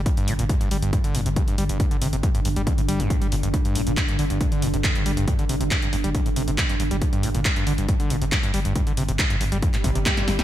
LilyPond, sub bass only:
\new Staff \with { instrumentName = "Sub bass" } { \clef bass \time 4/4 \key c \dorian \tempo 4 = 138 r8 g,,16 g,,16 r8 g,,16 g,,16 r8 g,,16 g,,16 r8 g,,16 g,,16 | r8 g,,16 g,,16 r8 g,,16 g,,16 r8 g,,16 g,,16 r8 g,,16 g,,16 | r8 g,,16 g,,16 r8 g,,16 g,,16 r8 g,,16 g,,16 r8 g,,16 g,,16 | r8 g,,16 g,,16 r8 g,,16 g,,16 r8 g,,16 g,,16 r8 g,,16 g,,16 |
r8 g,,16 g,,16 r8 g,,16 g,,16 r8 g,,16 g,,16 r8 g,,16 g,,16 | r8 g,,16 g,,16 r8 g,,16 g,,16 r8 g,,16 g,,16 r8 g,,16 g,,16 | }